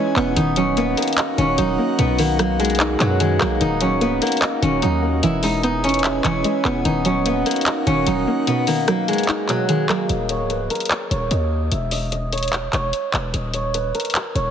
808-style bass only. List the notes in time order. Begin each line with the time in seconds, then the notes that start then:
0.16 E1
0.37 D#1
1.38 D#1
1.58 D#1
1.99 B1
3.00 F#2
3.41 B1
3.61 D#1
3.91 C#1
4.62 D#1
4.83 D#2
5.23 E1
6.24 E1
6.65 E1
6.85 D#1
7.87 D#1
8.07 D#1
10.10 D#1
10.40 C#1
11.11 D#1
11.31 D#2
11.72 E1
12.73 E1
13.14 E1
13.34 D#1
14.35 D#1